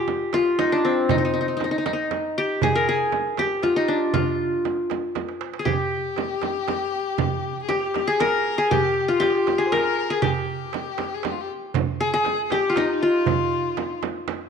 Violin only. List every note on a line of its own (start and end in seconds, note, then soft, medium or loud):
5.66 7.58 G4 medium
7.62 7.71 G#4 medium
7.70 8.09 G4 medium
8.08 8.21 G#4 medium
8.20 8.70 A#4 medium
8.71 9.11 G4 medium
9.10 9.24 F4 medium
9.22 9.31 G4 medium
9.30 9.37 G#4 medium
9.36 9.68 G4 medium
9.66 9.74 C5 medium
9.73 10.12 A#4 medium
10.11 10.23 G#4 medium
10.24 11.16 G4 medium
11.14 11.24 G#4 medium
11.23 11.33 G4 medium
11.32 11.42 F4 medium
11.41 11.50 G4 medium
12.00 12.12 G#4 medium
12.13 12.45 G#4 medium
12.45 12.52 G#4 medium
12.50 12.78 G4 medium
12.76 13.03 D#4 medium
13.02 14.03 F4 medium